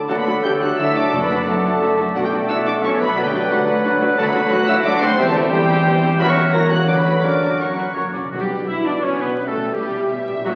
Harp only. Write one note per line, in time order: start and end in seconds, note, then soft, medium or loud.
0.00 0.95 A3 medium
0.00 0.26 D4 medium
0.00 0.43 F#4 medium
0.00 0.61 A4 medium
0.09 1.15 D3 medium
0.27 1.29 D4 medium
0.44 0.78 F#4 medium
0.62 1.64 A4 medium
0.79 1.46 F#4 medium
0.97 3.19 A3 medium
1.13 2.17 F#2 medium
1.31 2.32 D4 medium
1.47 1.81 F#4 medium
1.65 2.66 A4 medium
1.82 2.49 F#4 medium
1.99 2.99 F#3 medium
2.15 3.19 B2 medium
2.33 3.33 D4 medium
2.50 2.83 F#4 medium
2.84 3.50 F#4 medium
3.01 5.20 F#3 medium
3.18 4.17 D3 medium
3.51 3.83 F#4 medium
3.68 4.67 B4 medium
4.18 5.20 D3 medium
4.34 5.20 D4 medium
4.51 4.84 F#4 medium
4.85 5.20 F#4 medium
5.02 5.20 B3 medium
5.18 6.18 E3 medium
5.36 6.21 C4 medium
6.03 6.90 E4 medium
6.20 6.90 E3 medium
6.37 6.90 C#4 medium
6.54 7.05 F#4 medium
6.88 7.25 D3 medium
7.06 7.59 F#4 medium
7.06 7.26 B4 medium
7.24 8.33 F#2 medium
7.42 8.33 C#4 soft
7.61 7.94 F#4 medium
7.78 8.33 A#4 medium
7.96 8.22 F#4 medium
8.14 9.20 B2 medium
8.14 8.33 C#3 soft
8.18 9.34 D4 soft
8.23 9.36 F#4 soft
8.27 10.45 B4 soft
9.21 10.38 B2 medium
9.26 10.31 C#4 soft
9.30 10.36 E4 soft
9.35 10.45 G4 soft
10.28 10.55 A#2 medium
10.32 10.55 C#4 soft
10.37 10.55 E4 medium
10.41 10.55 F#4 medium